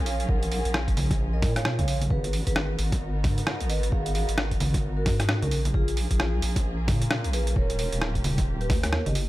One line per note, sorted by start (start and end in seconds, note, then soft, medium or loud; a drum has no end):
0.00 0.27 A#1 loud
0.00 2.07 C#4 medium
0.00 2.07 F4 medium
0.00 2.07 G#4 medium
0.00 2.07 A#4 medium
0.06 0.20 C#5 medium
0.06 0.20 F5 medium
0.06 open hi-hat loud
0.20 closed hi-hat medium
0.29 0.62 A#1 loud
0.29 0.43 A#4 medium
0.29 0.43 F#5 medium
0.29 kick loud
0.43 closed hi-hat medium
0.51 0.65 A#4 medium
0.51 0.65 F#5 medium
0.51 open hi-hat loud
0.65 0.95 A#1 medium
0.65 closed hi-hat medium
0.74 cross-stick loud
0.88 kick medium
0.88 closed hi-hat soft
0.97 1.44 A#1 medium
0.97 open hi-hat loud
0.97 high conga medium
1.11 kick loud
1.11 snare soft
1.11 closed hi-hat medium
1.33 1.43 A#4 medium
1.33 1.43 D#5 medium
1.42 1.81 A#2 medium
1.42 kick loud
1.42 snare medium
1.42 open hi-hat medium
1.56 1.65 C#5 medium
1.56 1.65 F5 medium
1.56 cross-stick medium
1.56 closed hi-hat medium
1.65 cross-stick loud
1.79 2.09 A#1 loud
1.79 1.95 C#5 medium
1.79 1.95 F5 medium
1.79 closed hi-hat soft
1.79 high conga medium
1.88 open hi-hat loud
2.02 closed hi-hat medium
2.02 high conga medium
2.10 2.44 G#1 loud
2.10 5.48 B3 medium
2.10 5.48 D#4 medium
2.10 5.48 F#4 medium
2.10 2.29 G#4 medium
2.10 5.48 A#4 medium
2.10 2.29 B4 loud
2.10 kick loud
2.24 closed hi-hat medium
2.33 open hi-hat loud
2.47 2.77 G#1 medium
2.47 2.70 G#4 medium
2.47 2.70 B4 loud
2.47 kick medium
2.47 closed hi-hat medium
2.56 cross-stick loud
2.79 3.26 G#1 medium
2.79 open hi-hat loud
2.92 kick loud
2.92 snare soft
2.92 closed hi-hat medium
3.24 3.62 G#2 medium
3.24 kick loud
3.24 snare medium
3.24 open hi-hat loud
3.24 high conga medium
3.38 closed hi-hat medium
3.47 cross-stick loud
3.60 3.90 G#1 loud
3.60 closed hi-hat medium
3.69 3.83 B4 medium
3.69 3.83 D#5 medium
3.69 open hi-hat loud
3.83 closed hi-hat medium
3.92 4.26 G#1 loud
3.92 4.06 G#4 medium
3.92 4.06 F5 medium
3.92 kick loud
4.06 closed hi-hat medium
4.15 4.29 G#4 medium
4.15 4.29 F5 loud
4.15 open hi-hat loud
4.29 4.59 G#1 medium
4.29 closed hi-hat medium
4.38 cross-stick loud
4.51 kick medium
4.51 closed hi-hat soft
4.60 5.07 G#1 medium
4.60 open hi-hat loud
4.60 high conga medium
4.74 kick loud
4.74 snare soft
4.74 closed hi-hat medium
4.97 5.06 F#4 medium
4.97 5.06 A#4 medium
5.06 5.44 G#2 medium
5.06 kick loud
5.06 snare medium
5.06 open hi-hat loud
5.20 5.29 D#4 medium
5.20 5.29 F#4 medium
5.20 cross-stick medium
5.20 closed hi-hat medium
5.29 cross-stick loud
5.42 5.72 A#1 loud
5.42 5.59 C#4 medium
5.42 5.59 A#4 medium
5.42 closed hi-hat medium
5.42 high conga medium
5.51 9.29 A#3 medium
5.51 9.29 C#4 medium
5.51 9.29 F4 medium
5.51 7.54 G#4 medium
5.51 open hi-hat loud
5.65 closed hi-hat medium
5.65 high conga medium
5.74 6.08 A#1 loud
5.74 5.93 F4 medium
5.74 5.93 G#4 loud
5.74 kick loud
5.88 closed hi-hat medium
5.97 open hi-hat loud
6.11 6.40 A#1 loud
6.11 6.34 F4 medium
6.11 6.34 G#4 loud
6.11 kick medium
6.11 closed hi-hat medium
6.20 cross-stick loud
6.42 6.89 A#1 medium
6.42 open hi-hat loud
6.56 kick loud
6.56 snare soft
6.56 closed hi-hat medium
6.88 7.26 A#2 medium
6.88 kick loud
6.88 snare medium
6.88 open hi-hat loud
6.88 high conga medium
7.02 closed hi-hat medium
7.11 cross-stick loud
7.24 7.54 A#1 loud
7.24 closed hi-hat medium
7.33 7.47 G#4 medium
7.33 7.47 B4 medium
7.33 open hi-hat loud
7.47 closed hi-hat medium
7.56 7.90 D#1 loud
7.56 9.29 G4 medium
7.56 7.70 A#4 medium
7.56 7.70 C#5 medium
7.56 kick loud
7.70 closed hi-hat medium
7.79 7.93 A#4 medium
7.79 7.93 C#5 medium
7.79 open hi-hat loud
7.93 8.22 D#1 loud
7.93 closed hi-hat medium
8.02 cross-stick loud
8.15 kick medium
8.15 closed hi-hat soft
8.24 8.71 D#1 medium
8.24 open hi-hat loud
8.24 high conga medium
8.38 kick loud
8.38 snare soft
8.38 closed hi-hat medium
8.61 8.70 G4 medium
8.61 8.70 B4 medium
8.61 closed hi-hat soft
8.70 9.03 D#2 medium
8.70 kick loud
8.70 snare medium
8.70 open hi-hat loud
8.83 8.93 A#4 medium
8.83 8.93 C#5 medium
8.83 cross-stick medium
8.83 closed hi-hat medium
8.93 cross-stick loud
9.06 9.29 G1 loud
9.06 9.22 G4 medium
9.06 9.22 D#5 medium
9.06 closed hi-hat medium
9.06 high conga medium
9.15 open hi-hat loud